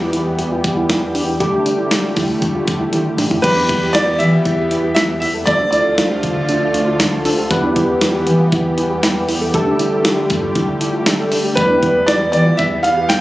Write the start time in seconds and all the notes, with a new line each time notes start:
Already playing: E3 G3 B3 E4 G4
0.01 F4
0.13 E2 E4, closed hi-hat
0.39 E2 G4, closed hi-hat
0.51 F4
0.64 E2, kick, closed hi-hat
0.77 E4
0.89 E2 E4, snare, closed hi-hat
1.15 E2 D4, open hi-hat
1.28 E4
1.40 G1 D3 G3 A3 D4 G4, kick, closed hi-hat
1.66 G1 D4, closed hi-hat
1.78 E4
1.91 G1, snare, closed hi-hat
2.04 F4
2.16 G1 E4, kick, open hi-hat
2.42 G1 G4, kick, closed hi-hat
2.55 F4
2.68 G1, kick, closed hi-hat
2.80 E4
2.93 G1 E4, closed hi-hat, high tom
3.18 G1 D4, mid tom, open hi-hat
3.31 E4, floor tom
3.42 E2 E3 G3 B3 E4 G4 B4, kick, closed hi-hat, crash
3.57 D4
3.69 E2 E4, kick, closed hi-hat
3.93 E2 F4 D5, snare, closed hi-hat
4.08 G4
4.19 E3 E5, closed hi-hat
4.33 F4
4.45 E2 E4, kick, closed hi-hat
4.71 E2 E4, closed hi-hat
4.84 G4
4.95 E2 E4 E5, snare, closed hi-hat
5.20 E2 E4 E5, open hi-hat
5.34 A4
5.46 D2 D3 F3 A3 D4 F4 A4 D5, kick, closed hi-hat
5.60 D4
5.71 D2 E4 D5, closed hi-hat
5.98 D2 F4, snare, closed hi-hat
6.11 G4
6.23 D3, kick, closed hi-hat
6.36 F4
6.49 D2 D4, closed hi-hat
6.74 D2 D4, closed hi-hat
6.87 F4
7.00 D2 D4, snare, closed hi-hat
7.25 D2 F3 A3 D4 F4 A4, open hi-hat
7.38 G4
7.50 E2 E3 G3 B3 E4 G4 B4, kick, closed hi-hat
7.63 D4
7.76 E2 E4, kick, closed hi-hat
8.01 E2 F4, snare, closed hi-hat
8.14 G4
8.27 E3, closed hi-hat
8.40 F4
8.52 E2 E4, kick, closed hi-hat
8.78 E2 E4, closed hi-hat
8.90 G4
9.03 E2 E4, snare, closed hi-hat
9.28 E2 E4, open hi-hat
9.41 A4
9.54 G1 D3 G3 A3 D4 G4 A4, kick, closed hi-hat
9.67 D4
9.79 G1 E4, closed hi-hat
10.05 G1 F4, snare, closed hi-hat
10.17 G4
10.30 G2, kick, closed hi-hat
10.43 F4
10.55 G1 E4, kick, closed hi-hat
10.81 G1 E4, closed hi-hat
10.93 F4
11.06 G1 G3 A3 D4 G4 A4, snare, closed hi-hat
11.32 G1 D4, open hi-hat
11.44 G4
11.55 E2 E3 G3 B3 E4 G4 B4, kick, closed hi-hat
11.70 D4
11.83 E2 E4, kick, closed hi-hat
12.06 E2 F4 D5, snare, closed hi-hat
12.21 G4
12.32 E3 D5, closed hi-hat
12.46 F4
12.57 E2 E4 E5, kick, closed hi-hat
12.83 E2 E4 F5, closed hi-hat
12.97 G4
13.09 E2 E4 G5, snare, closed hi-hat